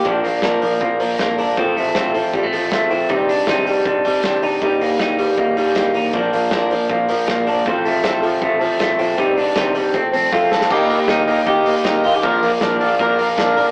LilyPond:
<<
  \new Staff \with { instrumentName = "Transistor combo organ" } { \time 4/4 \key bes \major \tempo 4 = 158 r1 | r1 | r1 | r1 |
r1 | r1 | r1 | <ees' g' bes'>8. r16 <ees' g' bes'>8 <ees' g' bes'>8 <ees' g' bes'>8. r16 <ees' g' bes'>8. r16 |
<d' f' bes'>8. r16 <d' f' bes'>8 <d' f' a'>8 <d' f' bes'>8. r16 <d' f' bes'>8. r16 | }
  \new Staff \with { instrumentName = "Steel-string acoustic guitar" } { \time 4/4 \key bes \major <bes, f bes d' bes'>8 <bes d' bes'>8 <bes, f bes d' bes'>8 <bes d' bes'>8 <f bes d' bes'>8 <bes d' bes'>8 <bes, f bes d' bes'>8 <bes d' bes'>8 | <a c' f' a'>8 <c' f' a'>8 <a c' f' a'>8 <c' f' a'>8 <a c' f' a'>8 <c' f' a'>8 <a c' f' a'>8 <c' f' a'>8 | <c ees c' d' g'>8 <c' d' g'>8 <c ees c' d' g'>8 <c' d' g'>8 <ees c' d' g'>8 <c' d' g'>8 <c ees c' d' g'>8 <c' d' g'>8 | <ees bes ees' g'>8 <bes ees' g'>8 <ees bes ees' g'>8 <bes ees' g'>8 <ees bes ees' g'>8 <bes ees' g'>8 <ees bes ees' g'>8 <bes ees' g'>8 |
<bes, f bes d' bes'>8 <bes d' bes'>8 <bes, f bes d' bes'>8 <bes d' bes'>8 <f bes d' bes'>8 <bes d' bes'>8 <bes, f bes d' bes'>8 <bes d' bes'>8 | <a c' f' a'>8 <c' f' a'>8 <a c' f' a'>8 <c' f' a'>8 <a c' f' a'>8 <c' f' a'>8 <a c' f' a'>8 <c' f' a'>8 | <c ees c' d' g'>8 <c' d' g'>8 <c ees c' d' g'>8 <c' d' g'>8 <f a c' a'>8 <f a c' a'>8 <f, c f a c' a'>8 <f a c' a'>8 | <ees bes ees' g'>8 <bes ees' g'>8 <ees bes ees' g'>8 <bes ees' g'>8 <ees bes ees' g'>8 <bes ees' g'>8 <ees bes ees' g'>8 <bes ees' g'>8 |
<bes, f bes d' bes'>8 <bes d' bes'>8 <f bes d' bes'>8 <bes d' bes'>8 <bes, f bes d' bes'>8 <bes d' bes'>8 <f bes d' bes'>8 <bes d' bes'>8 | }
  \new Staff \with { instrumentName = "Clean electric guitar" } { \time 4/4 \key bes \major <f d'>8 bes8 d'8 f8 bes8 f8 bes8 d'8 | <f c'>8 a8 c'8 f8 g16 a16 f8 a8 c'8 | <g ees'>8 d'8 ees'8 g8 d'8 g8 d'8 ees'8 | <g ees'>8 bes8 ees'8 g8 bes8 g8 bes8 ees'8 |
<f d'>8 bes8 d'8 f8 bes8 f8 bes8 d'8 | <f c'>8 a8 c'8 f8 a8 f8 a8 c'8 | <g ees'>8 d'8 ees'8 g8 c'8 c'8 f'8 a'8 | <bes g'>8 bes8 ees'8 bes8 g'8 bes8 ees'8 f'16 g'16 |
<f bes'>8 bes8 d'8 bes8 bes'8 bes8 d'8 bes'8 | }
  \new Staff \with { instrumentName = "Fingered electric bass" } { \clef bass \time 4/4 \key bes \major bes,,8 bes,,8 bes,,8 bes,,8 bes,,8 bes,,8 bes,,8 g,,8 | a,,8 a,,8 a,,8 a,,8 a,,8 a,,8 a,,8 bes,,8 | c,8 c,8 c,8 c,8 c,8 c,8 c,8 d,8 | ees,8 ees,8 ees,8 ees,8 ees,8 ees,8 ees,8 a,,8 |
bes,,8 bes,,8 bes,,8 bes,,8 bes,,8 bes,,8 bes,,8 g,,8 | a,,8 a,,8 a,,8 a,,8 a,,8 a,,8 a,,8 bes,,8 | c,8 c,8 c,8 c,8 f,,8 f,,8 f,,8 d,8 | ees,8 ees,8 ees,8 ees,8 ees,8 ees,8 ees,8 a,,8 |
bes,,8 bes,,8 bes,,8 bes,,8 bes,,8 bes,,8 bes,,8 g,,8 | }
  \new DrumStaff \with { instrumentName = "Drums" } \drummode { \time 4/4 <hh bd>8 hho8 <hh bd sn>8 hho8 <hh bd>8 hho8 <hh bd sn>8 hho8 | <hh bd>8 hho8 <hh bd sn>8 hho8 <hh bd>8 hho8 <hh bd sn>8 hho8 | <hh bd>8 hho8 <bd sn>8 hho8 <hh bd>8 hho8 <hh bd sn>8 hho8 | <hh bd>8 hho8 <bd sn>8 hho8 <hh bd>8 hho8 <hh bd sn>8 hho8 |
<hh bd>8 hho8 <bd sn>8 hho8 <hh bd>8 hho8 <hh bd sn>8 hho8 | <hh bd>8 hho8 <hh bd sn>8 hho8 <hh bd>8 hho8 <hh bd sn>8 hho8 | <hh bd>8 hho8 <hh bd sn>8 hho8 <hh bd>8 hho8 <bd sn>8 sn16 sn16 | <cymc bd>8 hho8 <hh bd sn>8 hho8 <hh bd>8 hho8 <hh bd sn>8 hho8 |
<hh bd>8 hho8 <hh bd sn>8 hho8 <hh bd>8 hho8 <hh bd sn>8 hho8 | }
>>